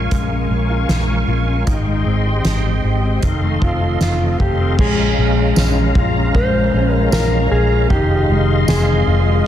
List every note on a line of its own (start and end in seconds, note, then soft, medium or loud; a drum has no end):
0.00 0.11 G#3 soft
0.00 0.49 C#4 medium
0.00 0.69 F4 medium
0.00 1.65 A#4 medium
0.00 1.65 F5 medium
0.00 1.65 G#5 medium
0.00 1.65 C#6 medium
0.11 0.46 A#1 medium
0.11 0.31 G#3 medium
0.11 kick medium
0.11 closed hi-hat medium
0.31 0.89 G#3 soft
0.50 0.84 A#1 medium
0.50 1.08 C#4 medium
0.70 1.27 F4 medium
0.89 1.23 A#1 medium
0.89 1.75 G#3 soft
0.89 snare loud
0.89 closed hi-hat medium
1.09 1.47 C#4 soft
1.27 1.62 A#1 medium
1.27 1.75 F4 medium
1.48 1.75 C#4 soft
1.66 3.23 D#3 medium
1.66 3.21 G#3 medium
1.66 4.76 D#5 soft
1.66 3.21 G5 medium
1.66 4.75 C6 medium
1.66 kick medium
1.66 closed hi-hat medium
1.87 2.44 G#3 soft
2.06 2.40 G#1 medium
2.06 2.65 C4 medium
2.26 2.83 G4 medium
2.44 2.79 G#1 medium
2.44 3.31 G#3 soft
2.44 snare medium
2.44 closed hi-hat medium
2.65 3.03 C4 soft
2.84 3.18 G#1 medium
2.84 3.31 G4 medium
3.04 3.31 C4 soft
3.23 3.57 F1 medium
3.23 4.87 D#3 medium
3.23 4.78 A4 medium
3.23 4.78 F5 soft
3.23 kick medium
3.23 closed hi-hat medium
3.43 4.00 A3 soft
3.62 3.96 F1 medium
3.62 4.19 C4 medium
3.62 4.01 F4 medium
3.62 kick medium
3.82 4.40 F4 medium
4.00 4.35 F1 medium
4.00 4.79 A3 soft
4.00 4.38 F4 medium
4.00 snare loud
4.00 closed hi-hat medium
4.20 4.59 C4 soft
4.40 4.74 F1 medium
4.40 5.96 F4 soft
4.40 4.77 G4 medium
4.40 kick medium
4.60 4.87 C4 soft
4.79 5.13 A#1 loud
4.79 5.18 G#3 medium
4.79 9.47 G#3 medium
4.79 7.88 C#4 medium
4.79 6.35 G#4 loud
4.79 9.47 F5 medium
4.79 7.88 A#5 medium
4.79 kick loud
4.79 crash loud
5.18 5.52 A#1 medium
5.18 6.35 G#3 medium
5.56 5.91 A#1 loud
5.56 6.73 C#4 soft
5.56 snare loud
5.56 ride medium
5.56 tambourine medium
5.95 6.30 A#1 loud
5.95 7.12 F4 medium
5.95 kick medium
6.34 6.69 A#1 loud
6.34 8.29 G#3 medium
6.34 6.93 C5 loud
6.34 kick medium
6.34 ride medium
6.73 7.08 A#1 medium
6.73 7.50 C#4 medium
6.93 7.12 A#4 loud
7.12 7.47 A#1 loud
7.12 9.07 F4 medium
7.12 7.51 A#4 medium
7.12 snare loud
7.12 tambourine medium
7.51 7.86 A#1 medium
7.51 7.98 C#4 medium
7.51 7.90 G#4 loud
7.90 8.25 F1 loud
7.90 9.47 D#3 medium
7.90 8.68 G4 loud
7.90 9.47 D#5 medium
7.90 9.47 C6 medium
7.90 kick loud
7.90 ride medium
8.29 8.64 F1 loud
8.29 9.46 G#3 medium
8.68 9.02 F1 medium
8.68 9.47 C4 medium
8.68 9.47 G#4 medium
8.68 snare loud
8.68 tambourine medium
9.07 9.41 F1 loud
9.07 9.47 F4 medium